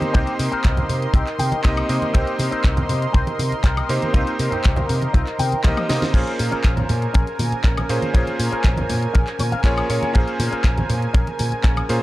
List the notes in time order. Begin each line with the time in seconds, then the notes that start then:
Already playing: A#3 C4 D#4 G4 A#4 C5 D#5 C6
0.02 closed hi-hat, high conga
0.13 C2 A#3 C4 D#4 G4 C5, kick, closed hi-hat
0.27 closed hi-hat, muted conga
0.39 C3, open hi-hat
0.51 C4 D#4 A#4, muted picked electric bass stroke, closed hi-hat
0.64 C2, kick, clap, closed hi-hat, muted conga
0.77 closed hi-hat, high conga, low conga
0.89 C3, open hi-hat, low conga
1.02 closed hi-hat
1.13 C2 C4 D#4 G4, kick, closed hi-hat, muted conga
1.27 clap, closed hi-hat
1.38 C3 G5, muted clean electric guitar stroke, open hi-hat, high conga
1.52 muted picked electric bass stroke, closed hi-hat, muted conga
1.63 C2 A#3 C4 D#4 G4 A#4 D#5, kick, clap, closed hi-hat
1.77 closed hi-hat, high woodblock
1.89 C3 A#3 C4 D#4 G4 D#5, open hi-hat
2.02 closed hi-hat, muted conga, high conga
2.13 C2 A#3 C4 D#4 G4 C5, kick, closed hi-hat
2.27 closed hi-hat
2.39 C3, open hi-hat, muted conga
2.51 C4 D#4 A#4, muted picked electric bass stroke, closed hi-hat
2.64 C2, kick, clap, closed hi-hat
2.77 closed hi-hat, high conga, low conga
2.89 C3, open hi-hat, muted conga, low conga
3.02 closed hi-hat
3.13 C2 C4 D#4 C5, kick, closed hi-hat
3.27 closed hi-hat, muted conga
3.38 C3, muted clean electric guitar stroke, open hi-hat, high conga
3.52 muted picked electric bass stroke, closed hi-hat
3.63 C2 C4 D#4 A#4, kick, clap, closed hi-hat
3.77 closed hi-hat, muted conga, high woodblock
3.89 C3 A#3 C4 D#4 G4 C5, open hi-hat
4.02 closed hi-hat, high conga
4.13 C2 A#3 C4 D#4 F4 G4 C5, kick, closed hi-hat, muted conga
4.27 closed hi-hat
4.39 C3, open hi-hat
4.51 C4 D#4 G4, muted picked electric bass stroke, closed hi-hat, low conga
4.64 C2, kick, clap, closed hi-hat, muted conga
4.76 closed hi-hat, high conga, low conga
4.89 C3, open hi-hat, low conga
5.02 closed hi-hat, muted conga
5.13 C2 C4 D#4 F4, kick, closed hi-hat
5.27 clap, closed hi-hat
5.38 C3 G5, muted clean electric guitar stroke, open hi-hat, high conga
5.52 muted picked electric bass stroke, closed hi-hat, muted conga
5.63 C2 A#3 C4 D#4 G4 A#4 D#5 F5, kick, clap, closed hi-hat, high tom
5.77 closed hi-hat, high tom, high woodblock
5.89 C3 A#3 C4 D#4 G4 D#5, snare, open hi-hat, muted conga
6.02 snare, closed hi-hat, high conga
6.13 A#1 A#3 C#4 F4 G#4 A#4 C5 G#5, kick, closed hi-hat, crash
6.27 closed hi-hat
6.39 A#2, open hi-hat
6.51 C#4 G#4 A#4, muted picked electric bass stroke, closed hi-hat, muted conga
6.64 A#1, kick, clap, closed hi-hat
6.77 closed hi-hat, high conga, low conga
6.89 A#2, open hi-hat, muted conga, low conga
7.02 closed hi-hat
7.14 A#1 C#4 G#4 A#4, kick, closed hi-hat
7.27 closed hi-hat
7.39 A#2, muted clean electric guitar stroke, open hi-hat, muted conga, high conga
7.52 muted picked electric bass stroke, closed hi-hat
7.64 A#1 C#4 G#4 A#4, kick, clap, closed hi-hat
7.77 closed hi-hat, muted conga, high woodblock
7.89 A#2 A#3 C#4 F4 G#4 C5, open hi-hat
8.02 closed hi-hat, high conga
8.13 A#1 A#3 C#4 F4 G#4 A#4 C5, kick, closed hi-hat
8.27 closed hi-hat, muted conga
8.39 A#2, open hi-hat
8.52 C#4 G#4 A#4, muted picked electric bass stroke, closed hi-hat
8.64 A#1, kick, clap, closed hi-hat, muted conga
8.77 closed hi-hat, high conga, low conga
8.90 A#2, open hi-hat, low conga
9.02 closed hi-hat
9.13 A#1 C#4 G#4 A#4, kick, closed hi-hat, muted conga
9.27 clap, closed hi-hat
9.39 A#2 C#5, muted clean electric guitar stroke, open hi-hat, high conga
9.52 F5, muted picked electric bass stroke, closed hi-hat, muted conga
9.63 A#1 A#3 C#4 F4 G#4 C5 C#5 G#5, kick, clap, closed hi-hat
9.78 closed hi-hat, high woodblock
9.89 A#2 A#3 C#4 F4 G#4 C#5, open hi-hat
10.02 closed hi-hat, muted conga, high conga
10.14 A#1 A#3 C#4 F4 G#4 A#4 C5, kick, closed hi-hat
10.28 closed hi-hat
10.40 A#2, open hi-hat, muted conga
10.51 C#4 G#4 A#4, muted picked electric bass stroke, closed hi-hat
10.64 A#1, kick, clap, closed hi-hat
10.78 closed hi-hat, high conga, low conga
10.89 A#2, open hi-hat, muted conga, low conga
11.02 closed hi-hat
11.13 A#1 C#4 G#4 A#4, kick, closed hi-hat
11.27 closed hi-hat, muted conga
11.38 A#2, muted clean electric guitar stroke, open hi-hat, high conga
11.52 muted picked electric bass stroke, closed hi-hat
11.63 A#1 C#4 G#4 A#4, kick, clap, closed hi-hat
11.77 closed hi-hat, muted conga, high woodblock
11.89 A#2 A#3 C#4 F4 G#4 C5, open hi-hat